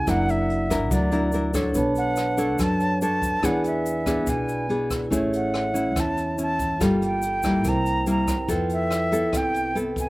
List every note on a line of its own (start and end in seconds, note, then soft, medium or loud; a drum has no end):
0.00 0.11 G#5 loud
0.04 0.91 F#1 loud
0.04 0.89 F#3 medium
0.04 0.67 D4 soft
0.04 1.71 E4 soft
0.04 0.67 E4 medium
0.04 1.72 A#4 soft
0.04 0.67 A#4 medium
0.04 1.73 D5 soft
0.04 kick medium
0.04 cross-stick medium
0.04 closed hi-hat medium
0.04 shaker medium
0.10 0.32 F#5 loud
0.10 1.73 F#5 medium
0.29 0.94 E5 loud
0.29 closed hi-hat soft
0.29 shaker soft
0.50 closed hi-hat soft
0.70 1.09 D4 medium
0.70 1.09 E4 medium
0.70 1.09 A#4 medium
0.70 kick medium
0.70 cross-stick medium
0.70 closed hi-hat soft
0.70 shaker medium
0.91 1.71 D2 medium
0.91 1.73 F#3 medium
0.91 1.55 D5 medium
0.91 kick medium
0.91 closed hi-hat medium
0.91 shaker medium
1.12 1.30 D4 medium
1.12 1.30 E4 medium
1.12 1.30 A#4 medium
1.12 closed hi-hat soft
1.12 shaker soft
1.32 1.51 D4 medium
1.32 1.51 E4 medium
1.32 1.52 A#4 medium
1.32 closed hi-hat soft
1.32 shaker medium
1.54 1.93 D4 medium
1.54 1.93 A4 medium
1.54 1.93 C#5 medium
1.54 kick medium
1.54 cross-stick medium
1.54 closed hi-hat soft
1.54 shaker medium
1.72 2.59 B1 medium
1.72 2.57 B3 medium
1.72 2.77 D4 medium
1.72 2.77 B4 medium
1.72 2.79 C#5 medium
1.72 kick medium
1.72 closed hi-hat medium
1.72 shaker medium
1.78 2.80 A5 medium
1.95 2.63 F#5 loud
1.95 closed hi-hat soft
1.95 shaker soft
2.16 cross-stick medium
2.16 closed hi-hat soft
2.16 shaker medium
2.37 2.98 D4 medium
2.37 2.98 A4 medium
2.37 2.98 C#5 medium
2.37 closed hi-hat soft
2.37 shaker medium
2.58 3.40 F#2 medium
2.58 3.42 F#3 medium
2.58 3.02 A5 loud
2.58 kick medium
2.58 cross-stick medium
2.58 closed hi-hat medium
2.58 shaker medium
2.78 3.43 D4 soft
2.78 3.40 B4 soft
2.78 3.44 C#5 soft
2.78 3.44 A5 soft
2.78 closed hi-hat soft
2.78 shaker soft
3.01 3.40 D4 medium
3.01 3.41 A4 medium
3.01 3.41 C#5 medium
3.01 3.47 A5 loud
3.01 closed hi-hat soft
3.01 shaker soft
3.22 kick medium
3.22 closed hi-hat soft
3.22 shaker medium
3.40 4.27 E2 medium
3.40 4.25 E3 medium
3.40 4.03 B3 medium
3.40 4.03 D4 medium
3.40 5.06 E4 medium
3.40 4.03 G#4 medium
3.40 5.08 B4 soft
3.40 5.09 D5 soft
3.40 kick medium
3.40 cross-stick medium
3.40 closed hi-hat medium
3.44 3.66 F#5 loud
3.44 5.10 G#5 medium
3.44 shaker medium
3.64 4.31 E5 medium
3.64 closed hi-hat soft
3.64 shaker soft
3.85 closed hi-hat soft
3.85 shaker medium
4.06 4.66 B3 medium
4.06 4.67 D4 medium
4.06 4.67 G#4 medium
4.06 kick medium
4.06 cross-stick medium
4.06 closed hi-hat soft
4.06 shaker medium
4.27 5.08 B1 medium
4.27 5.10 B2 medium
4.27 4.92 G#5 medium
4.27 kick medium
4.27 closed hi-hat medium
4.27 shaker medium
4.48 closed hi-hat soft
4.48 shaker soft
4.69 5.08 B3 medium
4.69 5.09 D4 medium
4.69 5.09 G#4 medium
4.69 closed hi-hat soft
4.91 kick medium
4.91 cross-stick medium
4.91 closed hi-hat soft
4.91 shaker medium
5.08 5.94 A3 medium
5.08 5.72 C#4 medium
5.08 6.75 E4 medium
5.08 kick medium
5.12 5.96 A1 medium
5.12 5.72 E4 medium
5.12 5.72 G#4 medium
5.12 6.77 C#5 medium
5.12 6.79 E5 medium
5.12 closed hi-hat medium
5.12 shaker medium
5.33 6.01 F#5 medium
5.33 closed hi-hat soft
5.33 shaker soft
5.54 cross-stick medium
5.54 closed hi-hat soft
5.74 6.34 C#4 medium
5.74 6.35 E4 medium
5.74 closed hi-hat soft
5.74 shaker medium
5.95 6.77 E2 medium
5.95 6.78 E3 medium
5.95 kick medium
5.95 cross-stick medium
5.95 closed hi-hat medium
5.95 shaker medium
6.00 6.40 A5 medium
6.17 closed hi-hat soft
6.17 shaker soft
6.38 6.77 C#4 medium
6.38 6.77 E4 medium
6.38 closed hi-hat soft
6.38 shaker medium
6.42 6.80 A5 medium
6.59 kick medium
6.59 closed hi-hat soft
6.59 shaker medium
6.77 7.65 G1 medium
6.77 7.43 G3 medium
6.77 7.22 A#3 medium
6.77 7.62 F4 medium
6.77 7.23 F4 medium
6.77 7.63 A4 soft
6.77 7.23 A4 medium
6.77 kick medium
6.77 shaker medium
6.81 7.65 G5 medium
6.81 cross-stick medium
6.81 closed hi-hat medium
7.02 7.70 G5 loud
7.02 closed hi-hat soft
7.02 shaker soft
7.22 closed hi-hat soft
7.22 shaker medium
7.43 8.04 G3 medium
7.43 8.04 A#3 medium
7.43 8.04 E4 medium
7.43 kick medium
7.43 cross-stick medium
7.43 closed hi-hat soft
7.43 shaker medium
7.62 8.45 C2 medium
7.62 8.47 C3 medium
7.62 8.45 E4 medium
7.62 8.47 A#4 soft
7.62 kick medium
7.62 closed hi-hat medium
7.62 shaker medium
7.66 8.48 C5 soft
7.66 8.49 G5 medium
7.66 8.09 A#5 loud
7.86 closed hi-hat soft
7.86 shaker soft
8.06 8.34 G3 medium
8.06 8.34 A#3 medium
8.06 8.34 E4 medium
8.06 closed hi-hat soft
8.06 shaker medium
8.10 8.48 A#5 loud
8.28 kick medium
8.28 cross-stick medium
8.28 closed hi-hat soft
8.28 shaker medium
8.46 9.33 F2 loud
8.46 9.31 F3 medium
8.46 8.91 B3 medium
8.46 10.09 E4 soft
8.46 8.91 E4 medium
8.46 10.09 A4 soft
8.46 8.91 A4 medium
8.46 10.09 B4 soft
8.46 kick medium
8.46 closed hi-hat medium
8.46 shaker medium
8.52 10.09 G5 medium
8.69 9.38 E5 loud
8.69 closed hi-hat soft
8.69 shaker soft
8.90 cross-stick medium
8.90 closed hi-hat soft
8.90 shaker medium
9.12 9.72 B3 medium
9.12 9.72 E4 medium
9.12 9.73 A4 medium
9.12 closed hi-hat soft
9.12 shaker medium
9.32 10.09 C2 medium
9.32 10.09 C3 medium
9.32 kick medium
9.32 cross-stick medium
9.32 closed hi-hat medium
9.32 shaker medium
9.37 9.77 G5 loud
9.54 closed hi-hat soft
9.54 shaker soft
9.75 10.09 B3 medium
9.75 10.09 E4 medium
9.75 10.09 A4 medium
9.75 closed hi-hat soft
9.75 shaker soft
9.96 kick medium
9.96 closed hi-hat soft
9.96 shaker medium
10.00 10.09 G#5 medium